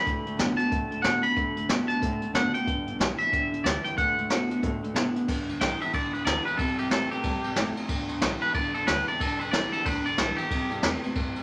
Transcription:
Already playing: B5
0.05 D3 A3, kick, closed hi-hat
0.26 A2 D3 A3, closed hi-hat
0.37 F#2 D3 A3 B3 D4 F#4, snare, closed hi-hat
0.57 D3 B3 D4 F#4 A5, closed hi-hat
0.69 A2 D3 A3, kick, closed hi-hat
0.91 D2 D3 A3, closed hi-hat
1.02 A2 D3 A3 B3 D4 F#4 F#5, snare, closed hi-hat
1.23 D3 B3 D4 F#4 B5, muted upright bass stroke, closed hi-hat
1.36 D3 A3, kick, closed hi-hat
1.56 D2 D3 A3, closed hi-hat
1.69 F#2 D3 A3 B3 D4 F#4, snare, closed hi-hat
1.88 A2 D3 B3 D4 F#4 A5, closed hi-hat
2.01 A2 D3 A3, kick, closed hi-hat
2.21 D3 A3, muted upright bass stroke, closed hi-hat
2.33 F#1 D3 A3 B3 D4 F#4 F#5, snare, closed hi-hat
2.54 D3 B3 D4 F#4 G5, muted upright bass stroke, closed hi-hat
2.66 G2 D3, kick, closed hi-hat
2.86 D2 G2 D3, closed hi-hat
2.99 B1 G2 D3 E3 G3 B3 G4, snare, closed hi-hat
3.19 G2 E3 B3 G4 E5, closed hi-hat
3.32 G1 G2 D3, kick, closed hi-hat
3.51 G1 G2 D3, closed hi-hat
3.64 D2 G2 D3 E3 G3 B3 G4 D5, snare, closed hi-hat
3.84 G2 E3 G5, closed hi-hat
3.97 D3 A3 F#5, kick, closed hi-hat
4.17 D2 D3 A3, closed hi-hat
4.29 D3 A3 B3 D4 F#4, snare, closed hi-hat
4.50 A2 D3 B3 D4 F#4, closed hi-hat
4.62 A2 B2 D3 A3, kick, closed hi-hat
4.82 D3 A3, muted upright bass stroke, closed hi-hat
4.94 A2 C3 D3 B3, snare, closed hi-hat
5.14 D3 B3, muted upright bass stroke, closed hi-hat
5.28 G2 D3, kick, crash
5.47 D2 G2 D3, ride
5.60 B1 G2 D3 E3 G3 B3 G4 G5, snare, ride
5.80 G2 E3 B3 G4 E5, muted upright bass stroke, ride
5.92 G2 D3 D5, kick, ride
6.13 G1 G2 D3 B4, ride
6.25 D2 G2 D3 E3 G3 B3 G4 D5, snare, ride
6.44 G2 E3 B3 G4 B4, ride
6.57 C3 G3 A4, kick, ride
6.78 C3 G3 G4, ride
6.89 E2 C3 E3 G3 A3 C4 E4 A4, snare, ride
7.10 C3 A3 C4 E4 G4, ride
7.23 G2 B2 C3 G3, kick, ride
7.44 C3 G3, ride
7.56 F#1 A2 C3 A3, snare, ride
7.76 C3 A3, muted upright bass stroke, ride
7.88 G2 D3, kick, ride
8.08 D2 G2 D3, ride
8.20 B1 G2 D3 E3 G3 B3 G4, snare, ride
8.39 G2 E3 B3 G4 B4, muted upright bass stroke, ride
8.53 G2 D3 D5, kick, ride
8.74 G1 G2 D3 A4, ride
8.86 D2 G2 D3 E3 G3 B3 G4 B4, snare, ride
9.07 G2 E3 B3 G4 D5, muted upright bass stroke, ride
9.18 G1 G2 D3 A4, kick, ride
9.39 G1 G2 D3 B4, ride
9.51 B1 G2 D3 E3 G3 B3 G4 D5, snare, ride
9.72 D2 G2 E3 B3 G4 A4, ride
9.84 D2 G2 D3 B4, kick, ride
10.04 G2 D3 D5, ride
10.17 B1 G2 D3 E3 G3 B3 G4 A4, snare, ride
10.37 G2 E3 B3 G4, muted upright bass stroke, ride
10.50 C3 G3, kick, ride
10.70 G2 C3 G3, ride
10.82 E2 C3 E3 G3 A3 C4 E4, snare, ride
11.03 C3 A3 C4 E4, muted upright bass stroke, ride
11.15 G2 C3 G3, kick, ride
11.36 C2 C3 G3, ride

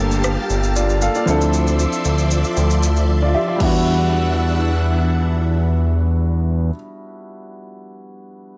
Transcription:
Already playing: G3 A#3 D4 F4 G4 A4 F5 A5
0.00 G1
0.11 shaker
0.24 cross-stick, shaker
0.50 G1, shaker
0.63 shaker
0.76 F4 D5, shaker
0.89 shaker
1.02 A4 F5, shaker
1.15 F4 D5, shaker
1.26 D2 F3 C4 D4 E4 D5 E5 C6, shaker
1.30 A4
1.41 shaker
1.53 shaker
1.67 shaker
1.79 shaker
1.93 shaker
2.05 D2, shaker
2.18 shaker
2.31 shaker
2.44 shaker
2.57 D2, shaker
2.70 shaker
2.83 shaker
2.96 shaker
3.22 F4 D5
3.35 G4 E5
3.48 F4 D5
3.56 G3 B3
3.60 E2 E3 D4 E4 E5 F#5, kick, crash
3.65 F#4

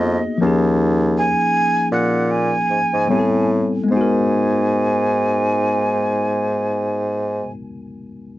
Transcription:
Already playing: F2 A#3 B3 D#4 F#4 G#4 D#5
0.38 D#2 F3 A#3
0.42 C#4 D#4
0.47 G#4
1.17 G#5
1.92 A#2 F#5
2.30 G#5
2.70 G#2
2.93 G#2
3.08 A2 G3 B3 C4 E4
3.13 G4
3.19 A4
3.84 G#3
3.88 G#2 B3
3.92 D#4 G#5
3.97 F#4
4.01 A#4

